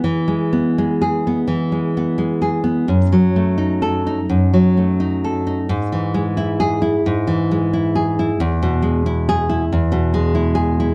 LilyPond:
\new Staff \with { instrumentName = "Nylon-string guitar" } { \time 4/4 \key e \major \tempo 4 = 87 << { r4 \tuplet 3/2 { r8 gis'4 } r2 | r4 \tuplet 3/2 { r8 a'4 } r2 | r4 \tuplet 3/2 { r8 gis'4 } r2 | r4 \tuplet 3/2 { r8 gis'4 } r2 | } \\ { \tuplet 3/2 { e8 gis8 b8 gis4 b8 e8 gis8 b8 gis8 gis'8 b8 } | \tuplet 3/2 { fis,8 fis8 a8 dis'4 dis'8 fis,8 fis8 a8 dis'8 a'8 dis'8 } | \tuplet 3/2 { gis,8 e8 gis8 e'4 e'8 gis,8 e8 gis8 e'8 gis'8 e'8 } | \tuplet 3/2 { e,8 b,8 gis8 e'4 e'8 e,8 b,8 gis8 e'8 gis'8 e'8 } | } >> }